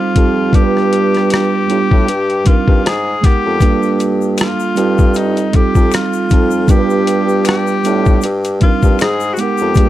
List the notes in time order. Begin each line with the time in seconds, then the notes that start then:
Already playing: G3 C4 D#4 F4 A4 C5
0.14 F2 G3 C4 D#4 F4, kick, closed hi-hat
0.18 G4
0.52 G2 G3 B3 D4 F4 G4, kick, closed hi-hat
0.57 A4
0.63 B4
0.77 cross-stick
0.93 closed hi-hat
1.15 cross-stick, closed hi-hat
1.30 G4, cross-stick, closed hi-hat
1.68 A2 G3 B3 D4 F4, closed hi-hat
1.73 G4
1.91 A2, kick
2.08 G2, closed hi-hat
2.30 closed hi-hat
2.45 G2 G3 C4 D4 D#4 F4, kick, closed hi-hat
2.50 A#4
2.68 G2, kick
2.85 G#2 G#4, cross-stick, closed hi-hat
3.21 G#3 B3 D#4 G4 F#5, kick, closed hi-hat
3.26 A#4, cross-stick
3.45 F2
3.60 G2 G3 A#3 D4 F4, kick, closed hi-hat, shaker
3.64 A4
3.83 shaker
4.00 closed hi-hat, shaker
4.21 shaker
4.38 F4, finger snap, cross-stick, closed hi-hat, shaker
4.60 shaker
4.75 G2 G3 C4 D#4 F4, closed hi-hat, shaker
4.80 A4
4.98 kick, shaker
5.14 D#4, closed hi-hat, shaker
5.37 closed hi-hat, shaker
5.52 F2 G3 C4 D#4 F4 G4, kick, closed hi-hat
5.57 A4
5.75 F2, kick, shaker
5.92 F4, finger snap, cross-stick, closed hi-hat, shaker
6.13 shaker
6.29 F2 G3 C4 D#4 F4, kick, closed hi-hat, shaker
6.34 A4
6.51 shaker
6.68 G2 G3 B3 D4 F4 G4, kick, closed hi-hat, shaker
6.72 A#4
6.79 B4
6.90 shaker
7.07 closed hi-hat, shaker
7.29 shaker
7.45 G4, finger snap, cross-stick, closed hi-hat, shaker
7.67 shaker
7.83 A2 G3 B3 D4, closed hi-hat, shaker
7.88 F4 D5
8.06 kick, shaker
8.21 G2, closed hi-hat, shaker
8.44 closed hi-hat, shaker
8.60 G2 G3 C4 D4 D#4 F4, kick, closed hi-hat
8.65 A#4
8.83 G2, kick, shaker
8.99 G#2 G#4, finger snap, cross-stick, closed hi-hat, shaker
9.20 shaker
9.33 F#4, shaker
9.38 G#3 B3 D#4 G4 F#5, closed hi-hat
9.43 A#4
9.58 F2, shaker
9.75 G2 G3 A#3 D4 F4, kick, closed hi-hat, shaker
9.80 G#4